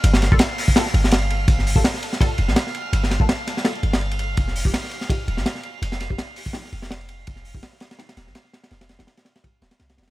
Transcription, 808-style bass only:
X:1
M:4/4
L:1/16
Q:"Swing 16ths" 1/4=166
K:Fdor
V:1 name="808-style bass" clef=bass
G,,,3 G,,, z6 G,,,6 | G,,,3 G,,, z6 F,,, B,,, z4 | G,,,3 G,,, z6 G,,,6 | F,,,3 F,,, z6 E,,, A,,, z4 |
F,,,3 F,,, z6 F,,,6 | F,,,3 F,,, z6 E,,, A,,, z4 | F,,,3 F,,, z6 E,,, z C,,2 F,,,2 |]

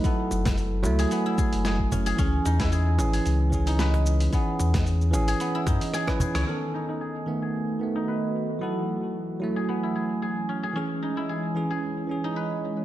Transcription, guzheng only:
X:1
M:4/4
L:1/16
Q:"Swing 16ths" 1/4=112
K:C#m
V:1 name="Guzheng"
B, z6 G B, E G z G2 C G | C z D E G z2 G z3 D B z3 | B, z6 G B, E D z G z G c | C z D D G z2 G z3 D B z3 |
B, z6 G B, E G z G2 C G | C z D E G z2 G z3 D B z3 |]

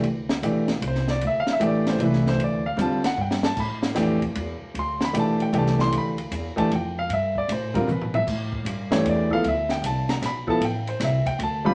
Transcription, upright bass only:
X:1
M:3/4
L:1/8
Q:"Swing" 1/4=153
K:Ddor
V:1 name="Upright bass" clef=bass
D,,2 B,,,2 C,,2 | D,, z A,,,2 C,,2 | D,,2 E,,2 G,,2 | A,,2 F,,2 E,, z |
D,,2 B,,,2 C,,2 | D,,2 E,, z F,,2 | G,,2 A,,2 B,,2 | A,,2 G,,2 E,,2 |
D,,2 C,,2 B,,,2 | A,,,2 C,, z D,,2 |]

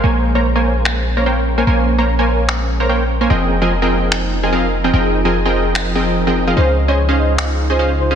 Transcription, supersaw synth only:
X:1
M:4/4
L:1/16
Q:"Swing 16ths" 1/4=147
K:Bbdor
V:1 name="Supersaw synth"
[B,Bcda]3 [B,Bcdb] z [B,Bcda]6 [B,Bcdb] [B,Bcdg] z2 [B,Bcda] | [B,Bcda]3 [B,Bcdb] z [B,Bcda]6 [B,Bcdb] [B,Bcdg] z2 [B,Bcda] | [F,CABeg]3 [F,CABea] z [F,CABeg]6 [F,CABea] [F,CABef] z2 [F,CABeg] | [F,CABeg]3 [F,CABea] z [F,CABeg]4- [F,CABeg] [F,CABeg]3 [F,CABeg]2 [F,CABef] |
[DAcef]3 [DAcea] z [DAcef]6 [DAcea] [DAcef] z2 [DAcef] |]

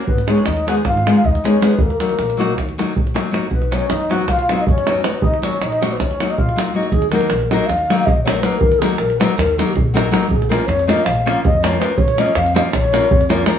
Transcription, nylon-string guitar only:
X:1
M:9/8
L:1/8
Q:3/8=106
K:Ebm
V:1 name="Nylon-string guitar"
z [A,CEA] z [A,CEA] z [A,CEA] z [A,CEA] [A,CEA] | z [G,B,EG] z [G,B,EG] z [G,B,EG] z [G,B,EG] [G,B,EG] | z [^F,=B,^D^F] z [F,B,DF] z [F,B,DF] z [F,B,DF] [F,B,DF] | z [G,B,EG] z [G,B,EG] z [G,B,EG] z [G,B,EG] [G,B,EG] |
z [G,B,EGB] z [G,B,EGB] z [G,B,EGB] z [G,B,EGB] [G,B,EGB] | z [G,B,EGB] z [G,B,EGB] z [G,B,EGB] z [G,B,EGB] [G,B,EGB] | z [F,B,DFB] z [F,B,DFB] z [F,B,DFB] z [F,B,DFB] [F,B,DFB] | z [F,B,DFB] z [F,B,DFB] z [F,B,DFB] z [F,B,DFB] [F,B,DFB] |]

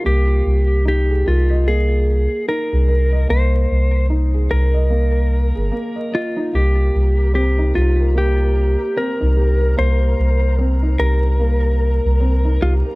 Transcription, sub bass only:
X:1
M:4/4
L:1/16
Q:"Swing 16ths" 1/4=74
K:Cm
V:1 name="Sub bass" clef=bass
C,,2 C,,4 C,,4- C,, z2 C,,3 | C,,2 C,,4 C,,4- C,, G,,, z4 | C,,2 C,,4 C,,4- C,, z2 C,,3 | C,,2 C,,4 C,,4- C,, C,,3 C,, z |]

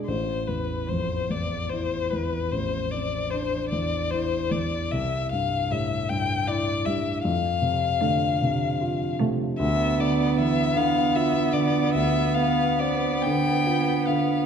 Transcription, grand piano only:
X:1
M:12/8
L:1/8
Q:3/8=50
K:Am
V:1 name="Grand piano" clef=bass
A,,, E,, F,, E,, E E,, A,,, C D E,, E E,, | C,, G,, A,, G,, E G,, F,, C, D, C, F C, | D,, D, E, D, F D, D,, B, C D, F D, |]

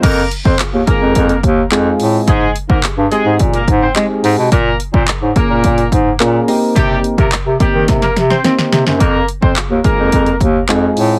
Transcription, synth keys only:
X:1
M:4/4
L:1/16
Q:1/4=107
K:Fm
V:1 name="Synth keys"
z4 [FA] [FA] [A,CEFA]3 z3 [A,CEFA]4 | z4 [GA] [GA] [A,CEGA]3 z3 [A,CEGA]4 | z4 [AB] [Ad] [B,DFAB]3 z3 [B,DFAB]2 [B,CEGB]2- | [B,CEGB]3 z [GB] [GB] [B,CEGB]3 z3 [B,CEGc]4 |
z4 [FA] [FB] [A,CEFA]3 z3 [A,CEFA]4 |]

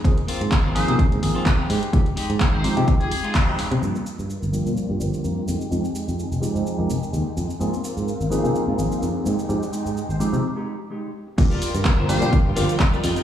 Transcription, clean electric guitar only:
X:1
M:4/4
L:1/16
Q:"Swing 16ths" 1/4=127
K:Gphr
V:1 name="Clean electric guitar"
z2 [B,CF] z2 [B,CF] z4 z [B,CF] z [B,CG] [A,EG]2- | [A,EG] z [A,EG] z2 [A,EG] z4 z [A,EF] z [A,EG]3 | [B,FG] z [B,FG]2 z2 [B,FG]2 z [B,FG] z2 [B,FB]2 [A,EG]2- | [A,EG] z [A,EG]2 z2 [A,EG]2 z [A,EB] z2 [A,EG]2 z2 |
[B,CF] z [B,CF]2 z2 [B,CE]2 z [B,CF] z2 [B,CD]2 [A,EG]2- | [A,EG] z [A,EG]2 z2 [A,EG]2 z [A,EG] z2 [A,EG]2 z2 | z [FGBd] z3 [FGBc]3 z2 [FGBf]2 z [FGBd] [FGAe]2 |]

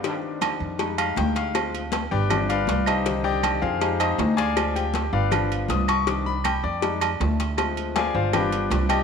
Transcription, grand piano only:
X:1
M:4/4
L:1/8
Q:1/4=159
K:Cm
V:1 name="Grand piano"
z4 z f g f- | f z2 [G=Bdg]2 [FBdf]2 [EGce]- | [EGce] [Gdeg]2 [FAcf]2 [EAce]2 [Adfa]- | [Adfa] [Gg]2 [F=Bdf]2 z e' _d' |
d' =b g d3 z2 | z2 [Adfa] [Fcdf] [G=Bdg]3 [Gdeg] |]
V:2 name="Grand piano"
[E,CD]4 [G,A,E]4 | [F,A,C] z3 [F,=B,D] z3 | [D,E,C]4 [A,EG]4 | [F,A,C] z3 [F,=B,D]3 z |
[E,CD] z3 [G,A,E] z3 | [F,A,C]4 [F,=B,D]4 |]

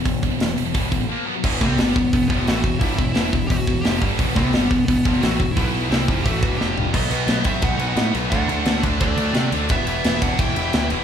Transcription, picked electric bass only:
X:1
M:4/4
L:1/8
Q:1/4=174
K:Em
V:1 name="Picked electric bass" clef=bass
E,,, E,,, E,,, E,,, E,,, A,,, z2 | E,,, C,, G,,, E,,, E,,, =F,,, A,,, E,,, | G,,, E,,, E,,, E,,, E,,, E,,, =F,,, G,,, | E,,, C,, G,,, E,,, E,,, =F,,, A,,, E,,, |
B,,,2 C,, =F,,, A,,, E,,, F,,,2 | B,,, B,,, B,,, B,,, B,,, B,,, A,, B,,, | D,, D,, D,, D,, D,, D,, C, D,, | E,,, E,,, E,,, E,,, E,,, E,,, D,, E,,, |]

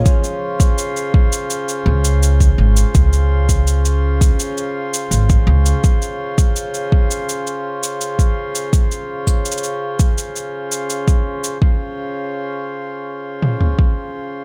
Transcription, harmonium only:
X:1
M:4/4
L:1/8
Q:1/4=83
K:Db
V:1 name="Harmonium"
[D,DFc]8- | [D,DFc]8- | [D,DFc]8- | [D,DFc]8 |
[D,DFc]8 |]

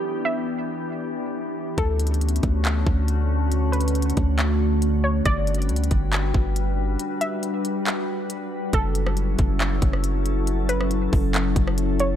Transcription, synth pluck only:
X:1
M:4/4
L:1/8
Q:1/4=138
K:F#phr
V:1 name="Synth pluck"
z e6- e | A6 z2 | z B3 z3 c | d6 z2 |
z e6- e | A6 z2 | z B3 z3 c |]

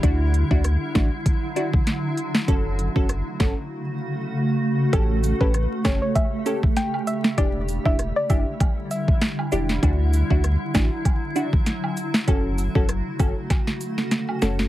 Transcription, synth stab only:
X:1
M:4/4
L:1/16
Q:"Swing 16ths" 1/4=98
K:F#phr
V:1 name="Synth stab"
[DEF]3 [DEF] z2 [DEF] z3 [DEF] z4 z | [CFA]3 [CFA] z2 [CFA] z8 z | [CGA]3 [CGA] z2 [CGA] z3 [CGA] z4 z | [DEG]3 [DEG] z2 [DEG] z6 z [DEG]2 |
[DEF]3 [DEF] z2 [DEF] z3 [DEF] z4 z | [CFA]3 [CFA] z2 [CFA] z6 z [CFA]2 |]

